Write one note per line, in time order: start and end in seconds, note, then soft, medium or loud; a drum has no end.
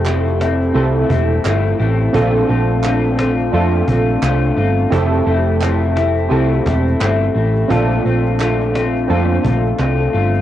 0.00 0.71 F1 loud
0.00 0.63 C4 medium
0.00 0.63 E4 medium
0.00 0.64 G4 medium
0.00 0.64 A4 loud
0.06 0.40 F3 medium
0.06 0.41 A3 medium
0.06 0.40 C4 medium
0.06 0.39 E4 medium
0.06 cajon slap medium
0.06 clap medium
0.27 cajon slap soft
0.40 0.74 A3 medium
0.40 0.74 C4 medium
0.40 0.75 E4 medium
0.40 cajon slap medium
0.62 cajon slap soft
0.74 1.03 C2 loud
0.74 1.09 F3 medium
0.74 1.10 A3 loud
0.74 2.02 C4 medium
0.74 1.09 C4 loud
0.74 2.02 E4 medium
0.74 1.08 E4 loud
0.74 2.03 G4 medium
0.74 2.03 A4 medium
0.74 cajon slap soft
0.97 cajon slap soft
1.09 1.38 E1 loud
1.09 1.44 A3 soft
1.09 1.45 C4 medium
1.09 1.44 E4 medium
1.09 cajon bass medium
1.32 cajon slap soft
1.45 1.72 G1 medium
1.45 1.79 F3 medium
1.45 1.80 A3 medium
1.45 1.79 C4 medium
1.45 1.78 E4 medium
1.45 cajon slap loud
1.45 clap medium
1.67 cajon slap soft
1.79 2.07 A1 medium
1.79 2.13 A3 soft
1.79 2.14 C4 medium
1.79 2.14 E4 medium
1.79 cajon slap soft
2.00 cajon slap soft
2.13 2.42 A#1 loud
2.13 2.49 A#2 medium
2.13 2.49 D3 loud
2.13 2.49 A3 loud
2.13 3.41 C4 medium
2.13 2.49 C4 loud
2.13 3.41 D4 medium
2.13 3.42 F4 medium
2.13 2.47 F4 loud
2.13 3.42 A4 loud
2.13 cajon bass loud
2.35 cajon slap soft
2.48 3.49 A#1 loud
2.48 2.83 A3 medium
2.48 2.84 C4 medium
2.48 2.83 F4 medium
2.48 cajon slap soft
2.70 cajon slap soft
2.83 3.18 D3 medium
2.83 3.19 A3 medium
2.83 3.17 C4 medium
2.83 3.16 F4 medium
2.83 cajon slap medium
2.83 clap medium
3.05 cajon slap soft
3.17 3.53 A3 medium
3.17 3.53 C4 medium
3.17 3.53 F4 medium
3.17 cajon slap loud
3.39 cajon slap soft
3.51 3.81 F2 loud
3.51 3.88 A#2 medium
3.51 3.88 D3 medium
3.51 3.88 A3 loud
3.51 4.80 C4 medium
3.51 3.87 C4 loud
3.51 4.80 D4 medium
3.51 4.81 F4 medium
3.51 3.86 F4 medium
3.51 4.81 A4 medium
3.51 cajon slap soft
3.74 cajon slap soft
3.87 4.16 A#1 loud
3.87 4.22 A3 soft
3.87 4.22 C4 medium
3.87 4.22 F4 medium
3.87 cajon bass medium
4.09 cajon slap soft
4.22 4.50 C2 medium
4.22 4.57 D3 medium
4.22 4.57 A3 medium
4.22 4.57 C4 medium
4.22 4.55 F4 medium
4.22 cajon slap loud
4.22 clap medium
4.44 cajon slap soft
4.56 4.85 G1 medium
4.56 4.91 A3 soft
4.56 4.92 C4 medium
4.56 4.92 F4 medium
4.56 cajon slap soft
4.78 cajon slap soft
4.90 5.20 F1 loud
4.90 5.27 F3 medium
4.90 5.27 A3 medium
4.90 6.19 C4 medium
4.90 5.26 C4 medium
4.90 6.19 E4 medium
4.90 5.25 E4 loud
4.90 6.20 G4 medium
4.90 6.20 A4 loud
4.90 cajon bass loud
5.13 cajon slap soft
5.26 6.27 F1 loud
5.26 5.61 A3 medium
5.26 5.61 C4 medium
5.26 5.61 E4 medium
5.26 cajon slap soft
5.47 cajon slap soft
5.61 5.96 F3 medium
5.61 5.96 A3 medium
5.61 5.95 C4 medium
5.61 5.94 E4 medium
5.61 cajon slap medium
5.61 clap medium
5.83 cajon slap soft
5.96 6.30 A3 soft
5.96 6.30 C4 medium
5.96 6.30 E4 medium
5.96 cajon slap medium
6.18 cajon slap soft
6.29 6.59 C2 loud
6.29 6.65 F3 medium
6.29 6.66 A3 medium
6.29 7.58 C4 medium
6.29 6.66 C4 medium
6.29 7.58 E4 medium
6.29 6.64 E4 loud
6.29 7.58 G4 medium
6.29 7.59 A4 medium
6.29 cajon slap soft
6.53 cajon slap soft
6.65 6.94 E1 loud
6.65 7.00 A3 soft
6.65 7.00 C4 medium
6.65 7.01 E4 medium
6.65 cajon bass medium
6.65 cajon slap medium
6.88 cajon slap soft
7.00 7.29 G1 medium
7.00 7.35 F3 medium
7.00 7.35 A3 medium
7.00 7.35 C4 medium
7.00 7.33 E4 medium
7.00 cajon slap loud
7.00 clap medium
7.23 cajon slap soft
7.34 7.63 A1 medium
7.34 7.69 A3 medium
7.34 7.69 C4 medium
7.34 7.70 E4 medium
7.34 cajon slap soft
7.56 cajon slap soft
7.68 7.98 A#1 loud
7.68 8.04 A#2 medium
7.68 8.05 D3 medium
7.68 8.05 A3 loud
7.68 8.97 C4 medium
7.68 8.04 C4 loud
7.68 8.97 D4 medium
7.68 8.98 F4 medium
7.68 8.03 F4 loud
7.68 8.98 A4 loud
7.68 cajon bass loud
7.92 cajon slap soft
8.04 9.06 A#1 medium
8.04 8.39 A3 soft
8.04 8.40 C4 medium
8.04 8.40 F4 medium
8.04 cajon slap soft
8.26 cajon slap soft
8.39 8.74 D3 medium
8.39 8.75 A3 medium
8.39 8.74 C4 medium
8.39 8.73 F4 medium
8.39 cajon slap medium
8.39 clap medium
8.61 cajon slap soft
8.74 9.09 A3 soft
8.74 9.09 C4 medium
8.74 9.09 F4 medium
8.74 cajon slap medium
8.96 cajon slap soft
9.08 9.37 F2 loud
9.08 9.44 A#2 medium
9.08 9.44 D3 medium
9.08 9.44 A3 medium
9.08 10.36 C4 medium
9.08 9.43 C4 medium
9.08 10.37 D4 medium
9.08 10.37 F4 medium
9.08 9.42 F4 medium
9.08 10.37 A4 medium
9.08 cajon slap soft
9.31 cajon slap soft
9.43 9.72 A#1 loud
9.43 9.78 A3 soft
9.43 9.78 C4 medium
9.43 9.78 F4 medium
9.43 cajon bass medium
9.66 cajon slap soft
9.78 10.07 C2 medium
9.78 10.13 D3 medium
9.78 10.14 A3 medium
9.78 10.13 C4 medium
9.78 10.12 F4 medium
9.78 cajon slap medium
9.78 clap medium
10.01 cajon slap soft
10.13 10.42 G1 medium
10.13 10.42 A3 soft
10.13 10.42 C4 medium
10.13 10.42 F4 medium
10.13 cajon slap soft
10.34 cajon slap soft